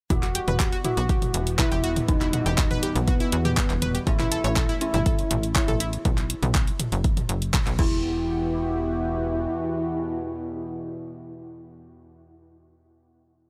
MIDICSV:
0, 0, Header, 1, 8, 480
1, 0, Start_track
1, 0, Key_signature, 1, "minor"
1, 0, Tempo, 495868
1, 100, Time_signature, 4, 2, 24, 8
1, 13066, End_track
2, 0, Start_track
2, 0, Title_t, "Synth pluck"
2, 0, Program_c, 0, 84
2, 99, Note_on_c, 0, 64, 85
2, 183, Note_off_c, 0, 64, 0
2, 221, Note_on_c, 0, 66, 99
2, 253, Note_off_c, 0, 66, 0
2, 339, Note_on_c, 0, 67, 102
2, 422, Note_off_c, 0, 67, 0
2, 462, Note_on_c, 0, 71, 109
2, 494, Note_off_c, 0, 71, 0
2, 579, Note_on_c, 0, 67, 103
2, 635, Note_off_c, 0, 67, 0
2, 702, Note_on_c, 0, 66, 104
2, 755, Note_off_c, 0, 66, 0
2, 819, Note_on_c, 0, 64, 78
2, 875, Note_off_c, 0, 64, 0
2, 941, Note_on_c, 0, 66, 104
2, 995, Note_off_c, 0, 66, 0
2, 1059, Note_on_c, 0, 67, 82
2, 1142, Note_off_c, 0, 67, 0
2, 1539, Note_on_c, 0, 71, 103
2, 1573, Note_off_c, 0, 71, 0
2, 1661, Note_on_c, 0, 67, 101
2, 1715, Note_off_c, 0, 67, 0
2, 1778, Note_on_c, 0, 66, 102
2, 1834, Note_off_c, 0, 66, 0
2, 2142, Note_on_c, 0, 64, 80
2, 2195, Note_off_c, 0, 64, 0
2, 2259, Note_on_c, 0, 66, 74
2, 2343, Note_off_c, 0, 66, 0
2, 2381, Note_on_c, 0, 67, 109
2, 2435, Note_off_c, 0, 67, 0
2, 2621, Note_on_c, 0, 71, 105
2, 2675, Note_off_c, 0, 71, 0
2, 2738, Note_on_c, 0, 67, 107
2, 2822, Note_off_c, 0, 67, 0
2, 2978, Note_on_c, 0, 66, 99
2, 3034, Note_off_c, 0, 66, 0
2, 3101, Note_on_c, 0, 64, 102
2, 3181, Note_off_c, 0, 64, 0
2, 3219, Note_on_c, 0, 66, 80
2, 3302, Note_off_c, 0, 66, 0
2, 3341, Note_on_c, 0, 67, 104
2, 3394, Note_off_c, 0, 67, 0
2, 3698, Note_on_c, 0, 71, 80
2, 3782, Note_off_c, 0, 71, 0
2, 3820, Note_on_c, 0, 67, 81
2, 3853, Note_off_c, 0, 67, 0
2, 3938, Note_on_c, 0, 61, 85
2, 4022, Note_off_c, 0, 61, 0
2, 4061, Note_on_c, 0, 64, 106
2, 4093, Note_off_c, 0, 64, 0
2, 4177, Note_on_c, 0, 69, 99
2, 4262, Note_off_c, 0, 69, 0
2, 4300, Note_on_c, 0, 73, 101
2, 4333, Note_off_c, 0, 73, 0
2, 4417, Note_on_c, 0, 69, 100
2, 4474, Note_off_c, 0, 69, 0
2, 4540, Note_on_c, 0, 64, 102
2, 4594, Note_off_c, 0, 64, 0
2, 4657, Note_on_c, 0, 61, 78
2, 4714, Note_off_c, 0, 61, 0
2, 4779, Note_on_c, 0, 64, 100
2, 4834, Note_off_c, 0, 64, 0
2, 4897, Note_on_c, 0, 69, 82
2, 4982, Note_off_c, 0, 69, 0
2, 5378, Note_on_c, 0, 73, 108
2, 5412, Note_off_c, 0, 73, 0
2, 5500, Note_on_c, 0, 69, 104
2, 5554, Note_off_c, 0, 69, 0
2, 5617, Note_on_c, 0, 64, 103
2, 5674, Note_off_c, 0, 64, 0
2, 7538, Note_on_c, 0, 64, 98
2, 7985, Note_off_c, 0, 64, 0
2, 13066, End_track
3, 0, Start_track
3, 0, Title_t, "Analog synth lead"
3, 0, Program_c, 1, 81
3, 101, Note_on_c, 1, 66, 110
3, 726, Note_off_c, 1, 66, 0
3, 819, Note_on_c, 1, 66, 105
3, 1445, Note_off_c, 1, 66, 0
3, 1539, Note_on_c, 1, 64, 94
3, 1982, Note_off_c, 1, 64, 0
3, 2019, Note_on_c, 1, 63, 103
3, 2885, Note_off_c, 1, 63, 0
3, 2979, Note_on_c, 1, 59, 102
3, 3845, Note_off_c, 1, 59, 0
3, 3938, Note_on_c, 1, 64, 113
3, 4565, Note_off_c, 1, 64, 0
3, 4659, Note_on_c, 1, 64, 103
3, 5285, Note_off_c, 1, 64, 0
3, 5379, Note_on_c, 1, 64, 99
3, 5821, Note_off_c, 1, 64, 0
3, 7539, Note_on_c, 1, 64, 112
3, 11618, Note_off_c, 1, 64, 0
3, 13066, End_track
4, 0, Start_track
4, 0, Title_t, "Synth bell"
4, 0, Program_c, 2, 98
4, 99, Note_on_c, 2, 66, 99
4, 725, Note_off_c, 2, 66, 0
4, 818, Note_on_c, 2, 66, 88
4, 1445, Note_off_c, 2, 66, 0
4, 1538, Note_on_c, 2, 64, 88
4, 1981, Note_off_c, 2, 64, 0
4, 2019, Note_on_c, 2, 63, 96
4, 2885, Note_off_c, 2, 63, 0
4, 3939, Note_on_c, 2, 64, 99
4, 4565, Note_off_c, 2, 64, 0
4, 4659, Note_on_c, 2, 64, 91
4, 5285, Note_off_c, 2, 64, 0
4, 5379, Note_on_c, 2, 64, 89
4, 5822, Note_off_c, 2, 64, 0
4, 7539, Note_on_c, 2, 64, 99
4, 11618, Note_off_c, 2, 64, 0
4, 13066, End_track
5, 0, Start_track
5, 0, Title_t, "Analog synth pad"
5, 0, Program_c, 3, 89
5, 101, Note_on_c, 3, 55, 89
5, 101, Note_on_c, 3, 59, 76
5, 101, Note_on_c, 3, 66, 75
5, 102, Note_on_c, 3, 52, 87
5, 3902, Note_off_c, 3, 55, 0
5, 3902, Note_off_c, 3, 59, 0
5, 3902, Note_off_c, 3, 66, 0
5, 3938, Note_on_c, 3, 61, 93
5, 3939, Note_on_c, 3, 57, 78
5, 5822, Note_off_c, 3, 52, 0
5, 5840, Note_off_c, 3, 57, 0
5, 5840, Note_off_c, 3, 61, 0
5, 7538, Note_on_c, 3, 52, 85
5, 7538, Note_on_c, 3, 67, 95
5, 7539, Note_on_c, 3, 59, 84
5, 7539, Note_on_c, 3, 66, 78
5, 11617, Note_off_c, 3, 52, 0
5, 11617, Note_off_c, 3, 67, 0
5, 11618, Note_off_c, 3, 59, 0
5, 11618, Note_off_c, 3, 66, 0
5, 13066, End_track
6, 0, Start_track
6, 0, Title_t, "Synth drone"
6, 0, Program_c, 4, 95
6, 99, Note_on_c, 4, 40, 77
6, 99, Note_on_c, 4, 47, 80
6, 5908, Note_off_c, 4, 40, 0
6, 5908, Note_off_c, 4, 47, 0
6, 7540, Note_on_c, 4, 40, 74
6, 7541, Note_on_c, 4, 47, 79
6, 11619, Note_off_c, 4, 40, 0
6, 11620, Note_off_c, 4, 47, 0
6, 13066, End_track
7, 0, Start_track
7, 0, Title_t, "Analog synth bass"
7, 0, Program_c, 5, 38
7, 100, Note_on_c, 5, 28, 98
7, 388, Note_off_c, 5, 28, 0
7, 462, Note_on_c, 5, 28, 88
7, 748, Note_off_c, 5, 28, 0
7, 942, Note_on_c, 5, 35, 82
7, 1228, Note_off_c, 5, 35, 0
7, 1299, Note_on_c, 5, 28, 108
7, 1588, Note_off_c, 5, 28, 0
7, 1662, Note_on_c, 5, 28, 96
7, 1948, Note_off_c, 5, 28, 0
7, 2019, Note_on_c, 5, 28, 97
7, 2308, Note_off_c, 5, 28, 0
7, 2381, Note_on_c, 5, 28, 102
7, 2668, Note_off_c, 5, 28, 0
7, 2861, Note_on_c, 5, 35, 101
7, 3148, Note_off_c, 5, 35, 0
7, 3219, Note_on_c, 5, 40, 104
7, 3508, Note_off_c, 5, 40, 0
7, 3581, Note_on_c, 5, 28, 99
7, 3868, Note_off_c, 5, 28, 0
7, 3938, Note_on_c, 5, 33, 103
7, 4227, Note_off_c, 5, 33, 0
7, 4301, Note_on_c, 5, 33, 94
7, 4588, Note_off_c, 5, 33, 0
7, 4781, Note_on_c, 5, 31, 85
7, 5068, Note_off_c, 5, 31, 0
7, 5139, Note_on_c, 5, 33, 111
7, 5427, Note_off_c, 5, 33, 0
7, 5500, Note_on_c, 5, 33, 106
7, 5787, Note_off_c, 5, 33, 0
7, 5859, Note_on_c, 5, 35, 97
7, 6148, Note_off_c, 5, 35, 0
7, 6220, Note_on_c, 5, 35, 100
7, 6508, Note_off_c, 5, 35, 0
7, 6702, Note_on_c, 5, 30, 102
7, 6988, Note_off_c, 5, 30, 0
7, 7058, Note_on_c, 5, 30, 103
7, 7347, Note_off_c, 5, 30, 0
7, 7421, Note_on_c, 5, 35, 99
7, 7534, Note_off_c, 5, 35, 0
7, 7539, Note_on_c, 5, 28, 99
7, 9181, Note_off_c, 5, 28, 0
7, 13066, End_track
8, 0, Start_track
8, 0, Title_t, "Drums"
8, 99, Note_on_c, 9, 42, 73
8, 99, Note_on_c, 9, 45, 92
8, 100, Note_on_c, 9, 36, 125
8, 196, Note_off_c, 9, 42, 0
8, 196, Note_off_c, 9, 45, 0
8, 197, Note_off_c, 9, 36, 0
8, 222, Note_on_c, 9, 39, 38
8, 222, Note_on_c, 9, 42, 48
8, 319, Note_off_c, 9, 39, 0
8, 319, Note_off_c, 9, 42, 0
8, 339, Note_on_c, 9, 42, 111
8, 436, Note_off_c, 9, 42, 0
8, 462, Note_on_c, 9, 42, 47
8, 462, Note_on_c, 9, 45, 86
8, 559, Note_off_c, 9, 42, 0
8, 559, Note_off_c, 9, 45, 0
8, 579, Note_on_c, 9, 39, 127
8, 579, Note_on_c, 9, 42, 70
8, 580, Note_on_c, 9, 36, 120
8, 676, Note_off_c, 9, 36, 0
8, 676, Note_off_c, 9, 39, 0
8, 676, Note_off_c, 9, 42, 0
8, 702, Note_on_c, 9, 42, 45
8, 798, Note_off_c, 9, 42, 0
8, 818, Note_on_c, 9, 42, 96
8, 818, Note_on_c, 9, 45, 91
8, 915, Note_off_c, 9, 42, 0
8, 915, Note_off_c, 9, 45, 0
8, 941, Note_on_c, 9, 42, 47
8, 1038, Note_off_c, 9, 42, 0
8, 1059, Note_on_c, 9, 36, 119
8, 1059, Note_on_c, 9, 42, 70
8, 1156, Note_off_c, 9, 36, 0
8, 1156, Note_off_c, 9, 42, 0
8, 1182, Note_on_c, 9, 42, 45
8, 1182, Note_on_c, 9, 45, 87
8, 1278, Note_off_c, 9, 42, 0
8, 1278, Note_off_c, 9, 45, 0
8, 1298, Note_on_c, 9, 42, 99
8, 1395, Note_off_c, 9, 42, 0
8, 1421, Note_on_c, 9, 42, 48
8, 1518, Note_off_c, 9, 42, 0
8, 1538, Note_on_c, 9, 39, 121
8, 1538, Note_on_c, 9, 42, 69
8, 1538, Note_on_c, 9, 45, 90
8, 1539, Note_on_c, 9, 36, 116
8, 1635, Note_off_c, 9, 39, 0
8, 1635, Note_off_c, 9, 42, 0
8, 1635, Note_off_c, 9, 45, 0
8, 1636, Note_off_c, 9, 36, 0
8, 1661, Note_on_c, 9, 42, 45
8, 1758, Note_off_c, 9, 42, 0
8, 1778, Note_on_c, 9, 42, 93
8, 1875, Note_off_c, 9, 42, 0
8, 1901, Note_on_c, 9, 42, 48
8, 1901, Note_on_c, 9, 45, 91
8, 1998, Note_off_c, 9, 42, 0
8, 1998, Note_off_c, 9, 45, 0
8, 2018, Note_on_c, 9, 42, 69
8, 2019, Note_on_c, 9, 36, 125
8, 2115, Note_off_c, 9, 42, 0
8, 2116, Note_off_c, 9, 36, 0
8, 2141, Note_on_c, 9, 39, 40
8, 2141, Note_on_c, 9, 42, 46
8, 2238, Note_off_c, 9, 39, 0
8, 2238, Note_off_c, 9, 42, 0
8, 2258, Note_on_c, 9, 42, 114
8, 2258, Note_on_c, 9, 45, 93
8, 2355, Note_off_c, 9, 42, 0
8, 2355, Note_off_c, 9, 45, 0
8, 2381, Note_on_c, 9, 42, 46
8, 2478, Note_off_c, 9, 42, 0
8, 2498, Note_on_c, 9, 39, 123
8, 2498, Note_on_c, 9, 42, 68
8, 2499, Note_on_c, 9, 36, 127
8, 2594, Note_off_c, 9, 39, 0
8, 2594, Note_off_c, 9, 42, 0
8, 2596, Note_off_c, 9, 36, 0
8, 2620, Note_on_c, 9, 42, 45
8, 2620, Note_on_c, 9, 45, 86
8, 2717, Note_off_c, 9, 42, 0
8, 2717, Note_off_c, 9, 45, 0
8, 2738, Note_on_c, 9, 42, 98
8, 2834, Note_off_c, 9, 42, 0
8, 2861, Note_on_c, 9, 42, 46
8, 2958, Note_off_c, 9, 42, 0
8, 2977, Note_on_c, 9, 42, 67
8, 2977, Note_on_c, 9, 45, 93
8, 2979, Note_on_c, 9, 36, 122
8, 3074, Note_off_c, 9, 42, 0
8, 3074, Note_off_c, 9, 45, 0
8, 3076, Note_off_c, 9, 36, 0
8, 3100, Note_on_c, 9, 42, 46
8, 3197, Note_off_c, 9, 42, 0
8, 3217, Note_on_c, 9, 42, 102
8, 3314, Note_off_c, 9, 42, 0
8, 3340, Note_on_c, 9, 42, 48
8, 3340, Note_on_c, 9, 45, 90
8, 3437, Note_off_c, 9, 42, 0
8, 3437, Note_off_c, 9, 45, 0
8, 3458, Note_on_c, 9, 39, 126
8, 3458, Note_on_c, 9, 42, 66
8, 3459, Note_on_c, 9, 36, 124
8, 3554, Note_off_c, 9, 39, 0
8, 3554, Note_off_c, 9, 42, 0
8, 3556, Note_off_c, 9, 36, 0
8, 3581, Note_on_c, 9, 39, 39
8, 3581, Note_on_c, 9, 42, 45
8, 3678, Note_off_c, 9, 39, 0
8, 3678, Note_off_c, 9, 42, 0
8, 3698, Note_on_c, 9, 42, 100
8, 3698, Note_on_c, 9, 45, 90
8, 3795, Note_off_c, 9, 42, 0
8, 3795, Note_off_c, 9, 45, 0
8, 3821, Note_on_c, 9, 42, 45
8, 3918, Note_off_c, 9, 42, 0
8, 3938, Note_on_c, 9, 42, 69
8, 3939, Note_on_c, 9, 36, 126
8, 4035, Note_off_c, 9, 36, 0
8, 4035, Note_off_c, 9, 42, 0
8, 4061, Note_on_c, 9, 39, 39
8, 4061, Note_on_c, 9, 42, 43
8, 4061, Note_on_c, 9, 45, 97
8, 4158, Note_off_c, 9, 39, 0
8, 4158, Note_off_c, 9, 42, 0
8, 4158, Note_off_c, 9, 45, 0
8, 4178, Note_on_c, 9, 42, 118
8, 4275, Note_off_c, 9, 42, 0
8, 4301, Note_on_c, 9, 42, 44
8, 4398, Note_off_c, 9, 42, 0
8, 4418, Note_on_c, 9, 39, 117
8, 4418, Note_on_c, 9, 42, 64
8, 4418, Note_on_c, 9, 45, 91
8, 4419, Note_on_c, 9, 36, 127
8, 4515, Note_off_c, 9, 39, 0
8, 4515, Note_off_c, 9, 42, 0
8, 4515, Note_off_c, 9, 45, 0
8, 4516, Note_off_c, 9, 36, 0
8, 4541, Note_on_c, 9, 42, 42
8, 4638, Note_off_c, 9, 42, 0
8, 4658, Note_on_c, 9, 42, 100
8, 4754, Note_off_c, 9, 42, 0
8, 4780, Note_on_c, 9, 42, 46
8, 4780, Note_on_c, 9, 45, 89
8, 4877, Note_off_c, 9, 42, 0
8, 4877, Note_off_c, 9, 45, 0
8, 4898, Note_on_c, 9, 42, 69
8, 4899, Note_on_c, 9, 36, 127
8, 4995, Note_off_c, 9, 42, 0
8, 4996, Note_off_c, 9, 36, 0
8, 5020, Note_on_c, 9, 42, 44
8, 5117, Note_off_c, 9, 42, 0
8, 5137, Note_on_c, 9, 42, 108
8, 5137, Note_on_c, 9, 45, 93
8, 5234, Note_off_c, 9, 42, 0
8, 5234, Note_off_c, 9, 45, 0
8, 5260, Note_on_c, 9, 42, 48
8, 5357, Note_off_c, 9, 42, 0
8, 5377, Note_on_c, 9, 39, 123
8, 5377, Note_on_c, 9, 42, 63
8, 5379, Note_on_c, 9, 36, 127
8, 5474, Note_off_c, 9, 39, 0
8, 5474, Note_off_c, 9, 42, 0
8, 5476, Note_off_c, 9, 36, 0
8, 5500, Note_on_c, 9, 42, 45
8, 5500, Note_on_c, 9, 45, 90
8, 5597, Note_off_c, 9, 42, 0
8, 5597, Note_off_c, 9, 45, 0
8, 5617, Note_on_c, 9, 42, 101
8, 5714, Note_off_c, 9, 42, 0
8, 5740, Note_on_c, 9, 42, 42
8, 5837, Note_off_c, 9, 42, 0
8, 5857, Note_on_c, 9, 42, 69
8, 5857, Note_on_c, 9, 45, 97
8, 5859, Note_on_c, 9, 36, 125
8, 5954, Note_off_c, 9, 42, 0
8, 5954, Note_off_c, 9, 45, 0
8, 5956, Note_off_c, 9, 36, 0
8, 5980, Note_on_c, 9, 39, 36
8, 5980, Note_on_c, 9, 42, 44
8, 6077, Note_off_c, 9, 39, 0
8, 6077, Note_off_c, 9, 42, 0
8, 6097, Note_on_c, 9, 42, 117
8, 6194, Note_off_c, 9, 42, 0
8, 6220, Note_on_c, 9, 42, 44
8, 6220, Note_on_c, 9, 45, 92
8, 6317, Note_off_c, 9, 42, 0
8, 6317, Note_off_c, 9, 45, 0
8, 6338, Note_on_c, 9, 39, 113
8, 6338, Note_on_c, 9, 42, 68
8, 6339, Note_on_c, 9, 36, 127
8, 6435, Note_off_c, 9, 39, 0
8, 6435, Note_off_c, 9, 42, 0
8, 6436, Note_off_c, 9, 36, 0
8, 6461, Note_on_c, 9, 42, 41
8, 6558, Note_off_c, 9, 42, 0
8, 6578, Note_on_c, 9, 42, 97
8, 6578, Note_on_c, 9, 45, 97
8, 6675, Note_off_c, 9, 42, 0
8, 6675, Note_off_c, 9, 45, 0
8, 6700, Note_on_c, 9, 42, 44
8, 6797, Note_off_c, 9, 42, 0
8, 6818, Note_on_c, 9, 42, 64
8, 6819, Note_on_c, 9, 36, 122
8, 6915, Note_off_c, 9, 42, 0
8, 6916, Note_off_c, 9, 36, 0
8, 6941, Note_on_c, 9, 42, 45
8, 6941, Note_on_c, 9, 45, 93
8, 7038, Note_off_c, 9, 42, 0
8, 7038, Note_off_c, 9, 45, 0
8, 7058, Note_on_c, 9, 42, 104
8, 7155, Note_off_c, 9, 42, 0
8, 7181, Note_on_c, 9, 42, 44
8, 7278, Note_off_c, 9, 42, 0
8, 7299, Note_on_c, 9, 36, 127
8, 7299, Note_on_c, 9, 39, 119
8, 7299, Note_on_c, 9, 42, 63
8, 7299, Note_on_c, 9, 45, 96
8, 7395, Note_off_c, 9, 39, 0
8, 7395, Note_off_c, 9, 42, 0
8, 7395, Note_off_c, 9, 45, 0
8, 7396, Note_off_c, 9, 36, 0
8, 7421, Note_on_c, 9, 39, 36
8, 7421, Note_on_c, 9, 42, 43
8, 7518, Note_off_c, 9, 39, 0
8, 7518, Note_off_c, 9, 42, 0
8, 7538, Note_on_c, 9, 49, 91
8, 7540, Note_on_c, 9, 36, 115
8, 7635, Note_off_c, 9, 49, 0
8, 7636, Note_off_c, 9, 36, 0
8, 13066, End_track
0, 0, End_of_file